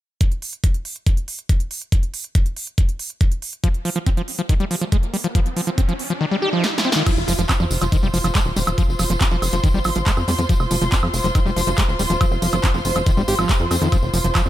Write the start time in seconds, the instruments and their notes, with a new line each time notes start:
0.21 kick, closed hi-hat
0.32 closed hi-hat
0.42 open hi-hat
0.53 closed hi-hat
0.64 kick, closed hi-hat
0.74 closed hi-hat
0.85 open hi-hat
0.96 closed hi-hat
1.06 kick, closed hi-hat
1.17 closed hi-hat
1.28 open hi-hat
1.39 closed hi-hat
1.49 kick, closed hi-hat
1.60 closed hi-hat
1.71 open hi-hat
1.82 closed hi-hat
1.92 kick, closed hi-hat
2.03 closed hi-hat
2.14 open hi-hat
2.24 closed hi-hat
2.35 kick, closed hi-hat
2.46 closed hi-hat
2.57 open hi-hat
2.67 closed hi-hat
2.78 kick, closed hi-hat
2.89 closed hi-hat
2.99 open hi-hat
3.10 closed hi-hat
3.21 kick, closed hi-hat
3.32 closed hi-hat
3.42 open hi-hat
3.53 closed hi-hat
3.64 acid bass F3, kick, closed hi-hat, riser
3.74 closed hi-hat
3.85 acid bass F3, open hi-hat
3.96 acid bass F3, closed hi-hat
4.06 acid bass C4, kick, closed hi-hat
4.17 acid bass F3, closed hi-hat
4.28 open hi-hat
4.39 acid bass F3, closed hi-hat
4.49 acid bass D#3, kick, closed hi-hat
4.60 acid bass G3, closed hi-hat
4.71 acid bass F3, open hi-hat
4.81 acid bass F3, closed hi-hat
4.92 acid bass G#3, kick, closed hi-hat
5.03 closed hi-hat
5.14 acid bass G3, open hi-hat
5.24 acid bass F3, closed hi-hat
5.35 acid bass F3, kick, closed hi-hat
5.46 closed hi-hat
5.56 acid bass F3, open hi-hat
5.67 acid bass F3, closed hi-hat
5.78 acid bass C4, kick, closed hi-hat
5.89 acid bass F3, closed hi-hat
5.99 open hi-hat
6.10 acid bass F3, closed hi-hat
6.21 acid bass D#3
6.31 acid bass G3
6.42 acid bass G4
6.53 acid bass F3
6.64 acid bass C4, snare
6.78 snare
6.85 acid bass C4
6.92 acid bass D#3, snare
7.06 acid bass F3, string section F4, kick, closed hi-hat, crash, tambourine, high woodblock
7.17 analog synth bass F1, tambourine
7.28 analog synth bass F1, acid bass F3, open hi-hat, tambourine
7.39 analog synth bass F1, acid bass F3, closed hi-hat, tambourine
7.49 acid bass C4, string section C5, kick, clap, closed hi-hat, tambourine, high woodblock
7.60 analog synth bass F2, acid bass F3, tambourine
7.71 analog synth bass F1, open hi-hat, tambourine
7.81 analog synth bass F1, acid bass F3, closed hi-hat, tambourine, high woodblock
7.92 acid bass D#3, kick, closed hi-hat, tambourine
8.02 analog synth bass F1, acid bass G3, string section C6, tambourine
8.14 analog synth bass F1, acid bass F3, open hi-hat, tambourine
8.24 analog synth bass F1, acid bass F3, closed hi-hat, tambourine, high woodblock
8.35 acid bass G#3, kick, clap, closed hi-hat, tambourine
8.45 analog synth bass D#1, tambourine
8.56 analog synth bass D#1, acid bass G3, open hi-hat, tambourine
8.67 analog synth bass D#1, acid bass F3, closed hi-hat, high woodblock
8.78 acid bass F3, kick, closed hi-hat, tambourine
8.89 analog synth bass F1, tambourine
8.99 analog synth bass F1, acid bass F3, open hi-hat, tambourine, high woodblock
9.10 analog synth bass F1, acid bass F3, closed hi-hat, tambourine
9.21 acid bass C4, kick, clap, closed hi-hat, tambourine
9.31 analog synth bass F1, acid bass F3, tambourine
9.42 analog synth bass F1, open hi-hat, tambourine, high woodblock
9.53 analog synth bass F1, acid bass F3, closed hi-hat, tambourine
9.64 acid bass D#3, kick, closed hi-hat, tambourine
9.74 analog synth bass G#1, acid bass G3, tambourine
9.84 analog synth bass G#1, acid bass F3, open hi-hat, tambourine, high woodblock
9.95 analog synth bass G#1, acid bass F3, closed hi-hat, tambourine
10.06 acid bass G#3, kick, clap, closed hi-hat, tambourine
10.17 analog synth bass F2, tambourine, high woodblock
10.28 analog synth bass F2, acid bass G3, open hi-hat, tambourine
10.38 analog synth bass F2, acid bass F3, closed hi-hat, tambourine
10.49 acid bass F3, kick, closed hi-hat, tambourine
10.60 analog synth bass F1, tambourine, high woodblock
10.71 analog synth bass F1, acid bass F3, open hi-hat, tambourine
10.81 analog synth bass F1, acid bass F3, closed hi-hat, tambourine
10.92 acid bass C4, kick, clap, closed hi-hat, tambourine
11.03 analog synth bass F2, acid bass F3, tambourine, high woodblock
11.14 analog synth bass F1, open hi-hat, tambourine
11.24 analog synth bass F1, acid bass F3, closed hi-hat, tambourine
11.35 acid bass D#3, kick, closed hi-hat, tambourine, high woodblock
11.46 analog synth bass F1, acid bass G3, tambourine
11.56 analog synth bass F1, acid bass F3, open hi-hat, tambourine
11.67 analog synth bass F1, acid bass F3, closed hi-hat, tambourine
11.77 acid bass G#3, kick, clap, closed hi-hat, tambourine, high woodblock
11.89 analog synth bass D#1, tambourine
11.99 analog synth bass D#1, acid bass G3, open hi-hat, tambourine
12.10 analog synth bass D#1, acid bass F3, closed hi-hat, tambourine
12.21 acid bass F3, kick, closed hi-hat, tambourine, high woodblock
12.32 analog synth bass F1, tambourine
12.42 analog synth bass F1, acid bass F3, open hi-hat, tambourine
12.52 analog synth bass F1, acid bass F3, closed hi-hat, tambourine, high woodblock
12.63 acid bass C4, kick, clap, closed hi-hat, tambourine
12.74 analog synth bass F1, acid bass F3, tambourine
12.85 analog synth bass F1, open hi-hat, tambourine
12.96 analog synth bass F1, acid bass F3, closed hi-hat, tambourine, high woodblock
13.06 acid bass D#3, kick, closed hi-hat, tambourine
13.17 analog synth bass G#1, acid bass G3, tambourine
13.28 analog synth bass G#1, acid bass G4, open hi-hat, tambourine
13.39 analog synth bass G#1, acid bass F3, closed hi-hat, tambourine, high woodblock
13.49 acid bass C4, kick, clap, closed hi-hat, tambourine
13.59 analog synth bass F2, tambourine
13.71 analog synth bass F2, acid bass C4, open hi-hat, tambourine, high woodblock
13.81 analog synth bass F2, acid bass D#3, closed hi-hat, tambourine
13.92 acid bass F3, kick, closed hi-hat, tambourine, high woodblock
14.03 analog synth bass F1, tambourine
14.13 analog synth bass F1, acid bass F3, open hi-hat, tambourine
14.24 analog synth bass F1, acid bass F3, closed hi-hat, tambourine
14.35 acid bass F3, kick, clap, closed hi-hat, tambourine, high woodblock
14.46 analog synth bass F2, acid bass F3, tambourine